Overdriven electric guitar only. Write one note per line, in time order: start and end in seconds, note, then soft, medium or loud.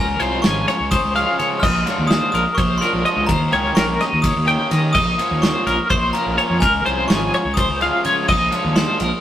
0.20 0.43 F3 medium
0.20 0.43 G#3 medium
0.20 0.44 C#4 medium
0.20 0.44 F4 loud
0.44 0.75 F3 medium
0.44 0.75 G#3 medium
0.44 0.75 C#4 medium
0.44 0.75 F4 medium
1.15 1.37 F3 medium
1.15 1.38 G#3 medium
1.15 1.39 C#4 medium
1.15 1.39 F4 medium
1.39 1.62 F3 medium
1.39 1.63 G#3 medium
1.39 1.63 C#4 medium
1.39 1.63 F4 medium
1.86 2.09 F3 medium
1.86 2.09 G#3 medium
1.86 2.09 D4 medium
1.86 2.10 F4 loud
2.10 2.41 F3 medium
2.10 2.41 G#3 medium
2.10 2.41 D4 medium
2.10 2.42 F4 medium
2.81 3.03 F3 medium
2.81 3.04 G#3 medium
2.81 3.04 D4 medium
2.81 3.04 F4 medium
3.04 3.28 F3 medium
3.04 3.29 G#3 medium
3.04 3.29 D4 medium
3.04 3.29 F4 medium
3.51 3.74 D#3 medium
3.51 3.74 A#3 medium
3.51 3.75 C#4 medium
3.51 3.75 G4 loud
3.75 4.07 D#3 medium
3.75 4.07 A#3 medium
3.75 4.07 C#4 medium
3.75 4.07 G4 medium
4.46 4.69 D#3 medium
4.46 4.70 A#3 medium
4.46 4.71 C#4 medium
4.46 4.71 G4 loud
4.71 4.95 D#3 medium
4.71 4.95 A#3 medium
4.71 4.95 C#4 medium
4.71 4.95 G4 medium
5.18 5.42 F3 medium
5.18 5.42 A#3 medium
5.18 5.43 C#4 medium
5.18 5.42 F4 medium
5.43 5.74 F3 medium
5.43 5.74 A#3 medium
5.43 5.74 C#4 medium
5.43 5.74 F4 medium
6.14 6.36 F3 medium
6.14 6.37 A#3 medium
6.14 6.37 C#4 medium
6.14 6.37 F4 loud
6.37 6.62 F3 medium
6.37 6.62 A#3 medium
6.37 6.62 C#4 medium
6.37 6.62 F4 medium
6.85 7.07 F3 medium
6.85 7.07 G#3 medium
6.85 7.08 C#4 loud
6.85 7.08 F4 medium
7.08 7.40 F3 medium
7.08 7.40 G#3 medium
7.08 7.40 C#4 medium
7.08 7.40 F4 medium
7.81 8.03 F3 medium
7.81 8.04 G#3 medium
7.81 8.04 C#4 loud
7.81 8.04 F4 loud
8.04 8.28 F3 medium
8.04 8.29 G#3 medium
8.04 8.29 C#4 medium
8.04 8.29 F4 medium
8.51 8.74 F3 medium
8.51 8.75 G#3 medium
8.51 8.75 D4 medium
8.51 8.76 F4 loud
8.76 9.07 F3 medium
8.76 9.07 G#3 medium
8.76 9.07 D4 medium
8.76 9.08 F4 medium